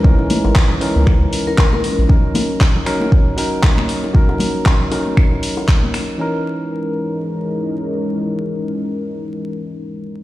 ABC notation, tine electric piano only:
X:1
M:4/4
L:1/8
Q:"Swing 16ths" 1/4=117
K:C#dor
V:1 name="Tine electric piano"
[E,CDA]3 [E,CDA]4- [E,CDA] | [F,CDA]3 [F,CDA]2 [F,CDA]3 | [F,CDA]3 [F,CDA]4- [F,CDA] | [E,CDA]8- |
[E,CDA]8 |]